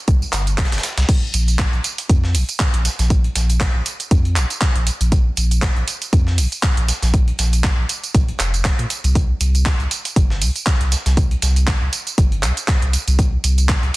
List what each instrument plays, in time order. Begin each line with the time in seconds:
0.08 sub bass C2, kick, closed hi-hat, tambourine
0.22 tambourine
0.33 sub bass G1, clap, closed hi-hat, open hi-hat, tambourine
0.47 closed hi-hat, tambourine
0.58 kick, snare, clap, closed hi-hat, open hi-hat, tambourine
0.65 snare, closed hi-hat
0.72 sub bass G1, snare, closed hi-hat, tambourine
0.78 snare, closed hi-hat
0.83 snare, closed hi-hat, open hi-hat, tambourine
0.98 sub bass C2, snare, closed hi-hat, tambourine
1.09 kick, closed hi-hat, crash, tambourine
1.34 sub bass A#1, closed hi-hat, open hi-hat, tambourine
1.48 closed hi-hat, tambourine
1.59 kick, snare, clap, closed hi-hat, tambourine
1.73 sub bass A#1, closed hi-hat
1.84 closed hi-hat, open hi-hat, tambourine
1.98 open hi-hat, tambourine
2.09 sub bass F2, kick, closed hi-hat, tambourine
2.24 snare
2.35 sub bass A#1, open hi-hat, tambourine
2.49 closed hi-hat, tambourine
2.60 kick, snare, clap, closed hi-hat
2.74 sub bass A#1, closed hi-hat
2.85 snare, closed hi-hat, open hi-hat, tambourine
2.99 sub bass A#1, snare, closed hi-hat, tambourine
3.10 kick, closed hi-hat, tambourine
3.24 closed hi-hat
3.35 sub bass A#1, snare, closed hi-hat, open hi-hat, tambourine
3.50 closed hi-hat, tambourine
3.60 kick, snare, clap, closed hi-hat, tambourine
3.75 sub bass A#1
3.86 closed hi-hat, open hi-hat, tambourine
4.00 closed hi-hat, tambourine
4.11 sub bass F2, kick, closed hi-hat, tambourine
4.25 closed hi-hat
4.36 sub bass A#1, clap, closed hi-hat, open hi-hat, tambourine
4.50 closed hi-hat, tambourine
4.61 kick, snare, clap, closed hi-hat, open hi-hat
4.75 sub bass A#1, closed hi-hat
4.87 closed hi-hat, open hi-hat, tambourine
5.01 sub bass A#1, closed hi-hat, tambourine
5.12 kick, closed hi-hat, tambourine
5.37 sub bass A#1, closed hi-hat, open hi-hat, tambourine
5.51 closed hi-hat, tambourine
5.62 kick, snare, clap, closed hi-hat, tambourine
5.76 sub bass A#1, closed hi-hat
5.88 closed hi-hat, open hi-hat, tambourine
6.02 open hi-hat, tambourine
6.13 sub bass F2, kick, closed hi-hat, tambourine
6.27 snare
6.38 sub bass A#1, open hi-hat, tambourine
6.52 closed hi-hat, tambourine
6.63 kick, snare, clap, closed hi-hat, tambourine
6.77 sub bass A#1, closed hi-hat
6.88 snare, closed hi-hat, open hi-hat, tambourine
7.02 sub bass A#1, snare, closed hi-hat, tambourine
7.14 kick, closed hi-hat, tambourine
7.28 closed hi-hat
7.39 sub bass A#1, snare, closed hi-hat, open hi-hat, tambourine
7.53 closed hi-hat, tambourine
7.64 kick, snare, clap, closed hi-hat, tambourine
7.78 sub bass A#1
7.89 closed hi-hat, open hi-hat, tambourine
8.04 closed hi-hat, tambourine
8.14 sub bass A#1, kick, closed hi-hat, tambourine
8.29 closed hi-hat
8.40 sub bass F1, clap, closed hi-hat, open hi-hat, tambourine
8.54 closed hi-hat, tambourine
8.65 kick, snare, clap, closed hi-hat, open hi-hat, tambourine
8.79 sub bass A#2, closed hi-hat
8.90 closed hi-hat, open hi-hat, tambourine
9.04 sub bass C2, closed hi-hat, tambourine
9.15 kick, closed hi-hat, tambourine
9.40 sub bass C2, closed hi-hat, open hi-hat, tambourine
9.55 closed hi-hat, tambourine
9.66 kick, snare, clap, closed hi-hat, tambourine
9.80 sub bass C2, closed hi-hat
9.91 closed hi-hat, open hi-hat, tambourine
10.05 open hi-hat, tambourine
10.16 sub bass G1, kick, closed hi-hat, tambourine
10.30 snare
10.41 sub bass C2, open hi-hat, tambourine
10.56 closed hi-hat, tambourine
10.66 kick, snare, clap, closed hi-hat, tambourine
10.81 sub bass C2, closed hi-hat
10.92 snare, closed hi-hat, open hi-hat, tambourine
11.06 sub bass C2, snare, closed hi-hat, tambourine
11.17 kick, closed hi-hat, tambourine
11.31 closed hi-hat
11.42 sub bass C2, snare, closed hi-hat, open hi-hat, tambourine
11.56 closed hi-hat, tambourine
11.67 kick, snare, clap, closed hi-hat, tambourine
11.82 sub bass C2
11.93 closed hi-hat, open hi-hat, tambourine
12.07 closed hi-hat, tambourine
12.18 sub bass G1, kick, closed hi-hat, tambourine
12.32 closed hi-hat
12.43 sub bass C2, clap, closed hi-hat, open hi-hat, tambourine
12.57 closed hi-hat, tambourine
12.68 kick, snare, clap, closed hi-hat, open hi-hat, tambourine
12.82 sub bass C2, closed hi-hat
12.93 closed hi-hat, open hi-hat, tambourine
13.08 sub bass C2, closed hi-hat, tambourine
13.19 kick, closed hi-hat, tambourine
13.44 sub bass C2, closed hi-hat, open hi-hat, tambourine
13.58 closed hi-hat, tambourine
13.69 kick, snare, clap, closed hi-hat, tambourine
13.83 sub bass C2, closed hi-hat